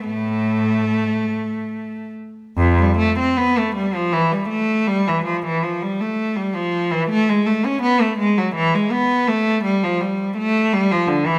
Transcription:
\new Staff \with { instrumentName = "Cello" } { \clef bass \time 3/4 \key g \mixolydian \tempo 4 = 81 << { a2~ a8 r8 | f,16 g16 a16 c'16 b16 a16 g16 f16 e16 g16 a8 | g16 e16 f16 e16 f16 g16 a8 g16 f8 e16 | a16 gis16 a16 cis'16 b16 a16 gis16 fis16 e16 gis16 b8 |
a8 g16 f16 g8 a8 g16 f16 d16 e16 | } \\ { a,4. r4. | r2. | r2. | r2. |
r2. | } >> }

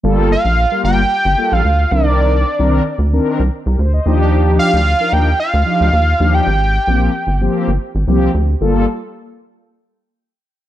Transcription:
<<
  \new Staff \with { instrumentName = "Analog synth lead" } { \time 4/4 \key g \minor \tempo 4 = 112 r8 f''4 g''4~ g''16 f''8. d''8~ | d''4. r2 r8 | r8 f''4 g''8 f''4.~ f''16 g''16~ | g''4.~ g''16 r2 r16 |
r1 | }
  \new Staff \with { instrumentName = "Analog polysynth" } { \time 4/4 \key g \minor << { r1 | r2 r8. <g' bes'>16 c''16 <c'' ees''>8 r16 | r1 | r1 |
r1 | } \\ { <g bes f' a'>8 r8. <g bes f' bes'>8 r8. <g bes f' a'>8 r8 <d ees c' d' bes'>8~ | <d ees c' d' bes'>8 r16 <ees c' d' bes'>8 r8 <ees c' d' bes'>8 r4 r16 <f d' ees' g'>8~ | <f d' ees' g'>4 r16 <f d' ees' bes'>8 r8. <f d' ees' g'>8 r8 <f d' ees' g'>8 | r8. <f bes c' g'>8 r8 <f bes c' g'>8 r8. <f bes c' g'>8 r8 |
<g bes f' a'>8 r2. r8 | } >> }
  \new Staff \with { instrumentName = "Analog synth bass" } { \clef bass \time 4/4 \key g \minor g,,8. bes,,8 r16 g,,8 r16 g,,16 r16 bes,,16 d,8 c,8~ | c,8. c,8 r16 d,8 r16 c,16 r16 c,16 d,8 ees,8~ | ees,8. d,8 r16 ees,8 r16 d,16 r16 d,16 ees,8 ees,8 | aes,,8. bes,,8 r16 g,,8 r16 g,,16 r16 aes,,16 c,8 d,8 |
g,,8 r2. r8 | }
>>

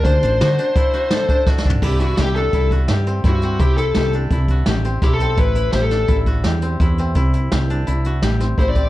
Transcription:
<<
  \new Staff \with { instrumentName = "Lead electric guitar" } { \time 5/4 \key c \lydian \tempo 4 = 169 c''1 r4 | g'8 fis'8 g'8 a'4 r4. fis'4 | g'8 a'4 r2 r8 g'16 a'8. | b'4 c''16 a'4 r2 r8. |
r1 c''16 d''8. | }
  \new Staff \with { instrumentName = "Koto" } { \time 5/4 \key c \lydian d'8 d'8 fis'8 d'8 e'8 fis'8 a'8 d'8 fis'8 d'8 | e'8 e'8 g'8 d'8 e'8 fis'8 g'8 c'8 e'8 c'8 | e'8 e'8 g'8 d'8 e'8 fis'8 g'8 c'8 e'8 c'8 | e'8 e'8 g'8 d'8 e'8 fis'8 g'8 c'8 e'8 c'8 |
e'8 e'8 g'8 d'8 e'8 fis'8 g'8 c'8 e'8 c'8 | }
  \new Staff \with { instrumentName = "Fretless electric bass" } { \clef bass \time 5/4 \key c \lydian d,8 a,,8 d8 r2. c,8 | c,4 c,4 c,4 g,4 g,4 | c,4 c,4 c,4 a,,4 b,,4 | a,,4 a,,4 a,,4 e,4 e,4 |
c,4 c,4 c,4 a,,4 a,,4 | }
  \new DrumStaff \with { instrumentName = "Drums" } \drummode { \time 5/4 <hh bd>8 hh8 <hh sn>8 hh8 <hh bd>8 hh8 <hh sn>8 <hh bd>8 \tuplet 3/2 { <bd sn>8 sn8 tomfh8 } | <cymc bd>8 hh8 <hh sn>8 hh8 <hh bd>8 <hh bd>8 <hh sn>8 hh8 <hh bd sn>8 hh8 | <hh bd>8 hh8 <hh sn>8 hh8 <hh bd>8 <hh bd>8 <hh sn>8 hh8 <hh bd sn>8 hh8 | <hh bd>8 hh8 <hh sn>8 <hh sn>8 <hh bd>8 <hh bd>8 <hh sn>8 hh8 <hh bd>8 hh8 |
<hh bd>8 hh8 <hh sn>8 hh8 hh8 hh8 <hh sn>8 <hh sn>8 <hh bd>8 <hh bd>8 | }
>>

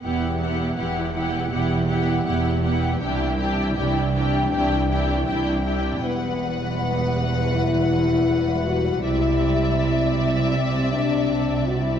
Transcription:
<<
  \new Staff \with { instrumentName = "Violin section" } { \time 4/4 \key e \minor \tempo 4 = 80 r1 | r1 | fis''1 | e''1 | }
  \new Staff \with { instrumentName = "Violin section" } { \time 4/4 \key e \minor <g' fis''>8 <g' fis''>8 <g' fis''>8 <g' fis''>8 <g' fis''>8 <g' fis''>8 <g' fis''>8 <g' fis''>8 | <g' g''>8 <g' g''>8 <g' g''>8 <g' g''>8 <g' g''>8 <g' g''>8 <g' g''>8 <g' g''>8 | b'1 | d''1 | }
  \new Staff \with { instrumentName = "French horn section" } { \time 4/4 \key e \minor <g g'>1 | <e d'>2.~ \tuplet 3/2 { <e d'>8. d'16 c'8 } | b2 e'4. fis'8 | e'2 c'8 d'8~ \tuplet 3/2 { d'8. fis'16 e'8 } | }
  \new Staff \with { instrumentName = "Viola section" } { \time 4/4 \key e \minor <b e'>8 <b e'>8 <b e'>8 <b e'>8 <b e'>8 <b e'>8 <b e'>8 <b e'>8 | <d' e'>8 <d' e'>8 <d' e'>8 <d' e'>8 <d' e'>8 <d' e'>8 <d' e'>8 <d' e'>8 | g1~ | g1 | }
  \new Staff \with { instrumentName = "Cello section" } { \clef bass \time 4/4 \key e \minor e,4 e,4 e,4 e,4 | c,4 c,4 c,4 c,4 | e,1 | c1 | }
  \new Staff \with { instrumentName = "Double bass section" } { \clef bass \time 4/4 \key e \minor e,,4 e,,4 e,,4 e,,4 | c,4 c,4 c,4 c,4 | e,,1 | c,1 | }
>>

